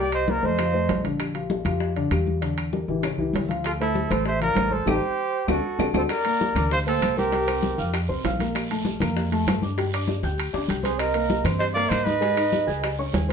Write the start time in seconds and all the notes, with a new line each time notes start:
Already playing: C2 G3 G4 G5
0.00 D5
0.12 C5 D#5, high conga, high timbale, claves
0.28 A#3 A#4 C5 D5, high bongo, high conga
0.43 F2 A3 A4 C5 D#5, high bongo, high conga
0.58 F3 F4 F5, high bongo, high conga, high timbale, claves
0.73 A3 A4 C5, high bongo, high conga
0.89 A#1, high bongo, low bongo, high conga, high timbale, low timbale
1.04 D3 D4 D5, high bongo, high conga, high timbale
1.19 high bongo, high conga, high timbale, claves
1.34 F3 F4 G4, high conga, high timbale
1.50 high bongo, high conga
1.65 F2 F3 F4 G4, high conga, high timbale, claves
1.80 high bongo, high conga
1.96 D3 D4 D5, high bongo, high conga, high timbale
2.11 E2 G3 F4 G4, high bongo, low bongo, high conga, high timbale, claves
2.27 high bongo, high conga
2.41 D3 D4 D5, high bongo, high conga, high timbale
2.58 high conga, high timbale, claves
2.73 G3 G4 A#4, high bongo, high conga
2.88 A1 E3 E4 G4, high bongo, high conga
3.03 C#3 C#4 C#5, high bongo, high conga, high timbale, claves
3.18 C#2 E3 E4 G4, high bongo, high conga
3.33 D2, high bongo, low bongo, high conga, high timbale, low timbale
3.49 F3 F4 F5, high bongo, high conga, high timbale
3.64 F4 A4, high bongo, high conga, high timbale, claves
3.80 A3 E4 A4 C5, high conga, high timbale
3.95 high bongo, high conga
4.10 A1 A3 A4 C5, high bongo, high conga, high timbale, claves
4.26 C5 E5, high bongo, high conga
4.40 F3 F4 A#4 D5 F5, high bongo, high conga, high timbale
4.55 A1 A3 A4 C5, high bongo, low bongo, high conga, high timbale, low timbale, claves
4.71 A4 C5, high bongo, high conga
4.86 A1 D#4 G4 A4 C5, high bongo, high conga, high timbale, claves
5.47 D2 D4 F#4 A4, high bongo, high conga, high timbale, claves
5.79 D2 D4 F#4 A4, high bongo, high conga, high timbale, claves
5.93 D2 D4 F#4 A4 C5, high bongo, high conga, high timbale, claves
6.09 A#4 D5, high bongo, high conga, high timbale, long guiro, claves
6.25 A#3 A#4 A#5, high conga, high timbale
6.41 high bongo, high conga, short guiro
6.55 D2 D4 D5 D6, high conga, low conga, high timbale, short guiro, claves
6.71 C5 F5, high bongo, high conga, long guiro
6.86 A#3 A4 C5 G5, high bongo, high conga, high timbale
7.01 C2, high bongo, low bongo, high conga, high timbale, short guiro, claves
7.17 C4 G4 A#4 C5 C6, high bongo, high conga, short guiro
7.32 G3 G4 G5, high bongo, high conga, high timbale, long guiro
7.47 C4 C5 C6, high conga, high timbale, claves
7.63 high bongo, high conga, short guiro
7.78 F2 F4 F5 F6, high bongo, high conga, short guiro
7.93 high bongo, high conga, high timbale, long guiro, claves
8.08 C2 C4 C5 C6, high bongo, high conga
8.24 A#1 F4 F5 F6, high bongo, low bongo, high conga, high timbale, low timbale, short guiro
8.40 A#3 A#4 A#5, high bongo, high conga, high timbale, short guiro
8.55 high bongo, high conga, high timbale, long guiro, claves
8.70 A3 A4 A5, high conga, high timbale
8.85 high bongo, high conga, short guiro
9.00 F2 A#3 A#4 A#5, high bongo, high conga, low conga, high timbale, short guiro, claves
9.16 high bongo, high conga, long guiro
9.32 A3 A4 A5, high bongo, high conga, high timbale
9.46 G2, high bongo, low bongo, high conga, high timbale, low timbale, short guiro, claves
9.62 D4 D5 D6, high bongo, high conga, short guiro
9.78 G3 G4 G5, high bongo, high conga, high timbale, long guiro
9.93 D4 D5 D6, high conga, high timbale, claves
10.08 high bongo, high conga, short guiro
10.23 D2 G4 G5 G6, high bongo, high conga, short guiro
10.38 high conga, high timbale, long guiro, claves
10.53 D2 D4 D5 D6, high bongo, high conga
10.68 C2 G4 G5 G6, high conga, high timbale, short guiro
10.83 C4 G#4 C5 C6, low bongo, high conga, high timbale, short guiro
10.98 A#4 D#5, high bongo, high conga, high timbale, long guiro, claves
11.14 A#3 A#4 A#5, high conga, high timbale
11.30 high bongo, high conga, short guiro
11.44 G2 C4 C5 C6, high bongo, high conga, low conga, high timbale, short guiro, claves
11.59 C5 D#5, high bongo, long guiro
11.74 A#3 A#4 D5 F5 A#5, high bongo, high conga, high timbale
11.88 G#2 C5 D#5, high bongo, low bongo, high conga, high timbale, claves
11.92 short guiro
12.03 D#4 B4 D#5 D#6, high bongo, high conga, short guiro
12.21 G#3 G#4 G#5, high bongo, high conga, high timbale, long guiro
12.36 D#4 D#5 D#6, high conga, high timbale, claves
12.52 high bongo, high conga, short guiro
12.67 C#2 G#4 G#5 G#6, high bongo, high conga, short guiro
12.83 high bongo, high conga, high timbale, long guiro, claves
12.99 C#4 C#5 C#6, high bongo, high conga
13.13 D#2 G#4 G#5 G#6, high bongo, low bongo, high conga, high timbale, low timbale, short guiro
13.28 C4 C5 C6, high conga